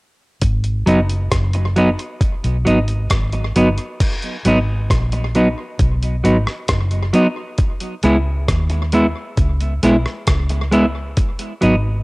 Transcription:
0.41 G#1, kick, closed hi-hat
0.64 closed hi-hat
0.86 F#1 F#3 B3 D#4, closed hi-hat
1.09 closed hi-hat
1.32 F#1, kick, cross-stick, closed hi-hat
1.53 muted clean electric guitar stroke, closed hi-hat
1.76 F#3 B3 D#4, closed hi-hat
1.99 closed hi-hat
2.21 kick, closed hi-hat
2.44 B1, closed hi-hat
2.65 G#1 F#3 B3 D#4, closed hi-hat
2.88 closed hi-hat
3.10 G#1, kick, cross-stick, closed hi-hat
3.33 muted clean electric guitar stroke, closed hi-hat
3.56 G1 F#3 B3 D#4, closed hi-hat
3.78 closed hi-hat
4.00 kick, closed hi-hat, crash
4.22 closed hi-hat
4.45 G#1 F#3 B3 D#4, closed hi-hat
4.90 A#1, kick, cross-stick, closed hi-hat
5.12 muted clean electric guitar stroke, closed hi-hat
5.35 F#3 B3 D#4, closed hi-hat
5.79 B1, kick, closed hi-hat
6.03 closed hi-hat
6.24 G#1 F#3 B3 D#4, closed hi-hat
6.47 cross-stick
6.68 F#1, kick, cross-stick, closed hi-hat
6.91 closed hi-hat
7.13 F#3 B3 D#4, closed hi-hat
7.58 kick, closed hi-hat
7.80 closed hi-hat
8.03 C#2 G#3 B3 E4, closed hi-hat
8.48 D#2, kick, cross-stick, closed hi-hat
8.70 muted clean electric guitar stroke, closed hi-hat
8.92 G#3 B3 E4, closed hi-hat
9.37 C#2, kick, closed hi-hat
9.61 closed hi-hat
9.83 B1 G#3 B3 E4, closed hi-hat
10.06 cross-stick
10.27 C#2, kick, cross-stick, closed hi-hat
10.49 muted clean electric guitar stroke, closed hi-hat
10.71 G#3 B3 E4, closed hi-hat
11.17 kick, closed hi-hat
11.39 closed hi-hat
11.61 G#1 F#3 B3 D#4, closed hi-hat

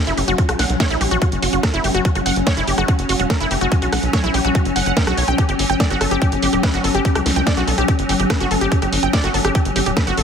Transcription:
Already playing: F#3 C#4
0.07 F#1 E4, closed hi-hat
0.17 F#1 G4, open hi-hat
0.28 F#1 F#4, closed hi-hat
0.38 F#4, kick, closed hi-hat
0.49 B1 F#4, cross-stick, closed hi-hat
0.59 B1 F#5, snare, open hi-hat
0.70 B1, closed hi-hat
0.80 C#5, kick, snare, closed hi-hat
0.90 A#1 E4, closed hi-hat
1.01 A#1 G4, open hi-hat
1.11 A#1 F#4, closed hi-hat
1.22 F#4, kick, closed hi-hat
1.32 F#1, closed hi-hat
1.42 F#1 F#4, open hi-hat
1.53 F#1 F#4, closed hi-hat
1.63 A#4, kick, cross-stick, snare, closed hi-hat
1.74 F#1 E4, closed hi-hat
1.84 F#1 G4, open hi-hat
1.95 F#1 F#4, closed hi-hat
2.05 F#4, kick, closed hi-hat
2.15 F#1 F#4, cross-stick, closed hi-hat
2.26 F#1 F#5, open hi-hat
2.36 F#1, closed hi-hat
2.47 C#5, kick, snare, closed hi-hat
2.57 F#1 E4, closed hi-hat
2.67 F#1 G4, open hi-hat
2.78 F#1 F#4, cross-stick, closed hi-hat
2.88 F#4, kick, closed hi-hat
2.99 F#1, closed hi-hat
3.09 F#1 F#4, open hi-hat
3.20 E1 F#4, closed hi-hat
3.30 A#4, kick, cross-stick, snare, closed hi-hat
3.40 F#1 E4, closed hi-hat
3.51 F#1 G4, open hi-hat
3.61 F#1 F#4, closed hi-hat
3.72 F#4, kick, closed hi-hat
3.82 B1 F#4, closed hi-hat
3.92 B1 F#5, cross-stick, snare, open hi-hat
4.03 B1, closed hi-hat
4.13 C#5, kick, snare, closed hi-hat
4.24 A#1 E4, closed hi-hat
4.34 A#1 G4, open hi-hat
4.45 A#1 F#4, cross-stick, closed hi-hat
4.55 F#4, kick, closed hi-hat
4.65 F#1, closed hi-hat
4.76 F#1 F#5, open hi-hat
4.86 F#1 F#5, closed hi-hat
4.97 A#4, kick, snare, closed hi-hat
5.07 B1 F#4, cross-stick, closed hi-hat
5.17 B1 C#5, open hi-hat
5.28 B1 G5, closed hi-hat
5.38 G4, kick, cross-stick, closed hi-hat
5.49 G1 G4, closed hi-hat
5.59 G1, open hi-hat
5.70 G1 G5, closed hi-hat
5.80 D5, kick, snare, closed hi-hat
5.90 G1 F#4, closed hi-hat
6.01 G1 A4, cross-stick, open hi-hat
6.11 G1 G4, closed hi-hat
6.22 G4, kick, closed hi-hat
6.32 G1, closed hi-hat
6.42 G1 G4, open hi-hat
6.53 D1 G4, cross-stick, closed hi-hat
6.63 B4, kick, snare, closed hi-hat
6.74 G1 F#4, closed hi-hat
6.84 G1 A4, open hi-hat
6.95 G1 G4, closed hi-hat
7.05 G4, kick, closed hi-hat
7.15 C#2 G4, cross-stick, closed hi-hat
7.26 C#2, snare, open hi-hat
7.36 C#2 G5, closed hi-hat
7.47 D5, kick, snare, closed hi-hat
7.57 B1 F#4, closed hi-hat
7.68 B1 A4, open hi-hat
7.78 B1 G4, closed hi-hat
7.88 G4, kick, closed hi-hat
7.99 G1, closed hi-hat
8.09 G1 G4, open hi-hat
8.20 G1 G4, closed hi-hat
8.30 B4, kick, cross-stick, snare, closed hi-hat
8.40 G1 F#4, closed hi-hat
8.51 G1 A4, open hi-hat
8.61 G1 G4, closed hi-hat
8.72 G4, kick, closed hi-hat
8.82 G1 G4, cross-stick, closed hi-hat
8.92 G1, open hi-hat
9.03 G1 G5, closed hi-hat
9.13 D5, kick, snare, closed hi-hat
9.24 G1 F#4, closed hi-hat
9.34 G1 A4, open hi-hat
9.45 G1 G4, cross-stick, closed hi-hat
9.55 G4, kick, closed hi-hat
9.65 G1, closed hi-hat
9.76 G1 G4, open hi-hat
9.86 D1 G4, closed hi-hat
9.97 B4, kick, cross-stick, snare, closed hi-hat
10.07 G1 F#4, closed hi-hat
10.17 G1 A4, open hi-hat

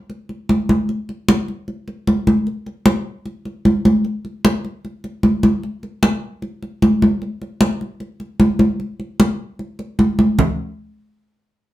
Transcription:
0.10 high conga
0.29 high conga
0.49 high conga
0.69 high conga
0.89 high conga
1.09 high conga
1.28 high conga
1.48 high conga
1.68 high conga
1.88 high conga
2.07 high conga
2.27 high conga
2.47 high conga
2.66 high conga
2.86 high conga
3.25 high conga
3.45 high conga
3.65 high conga
3.85 high conga
4.05 high conga
4.25 high conga
4.45 high conga
4.65 high conga
4.85 high conga
5.04 high conga
5.23 high conga
5.43 high conga
5.63 high conga
5.83 high conga
6.03 high conga
6.42 high conga
6.63 high conga
6.82 high conga
7.02 high conga
7.22 high conga
7.42 high conga
7.61 high conga
7.81 high conga
8.00 high conga
8.20 high conga
8.40 high conga
8.59 high conga
8.80 high conga
9.00 high conga
9.20 high conga
9.59 high conga
9.79 high conga
9.99 high conga
10.19 high conga
10.39 low conga

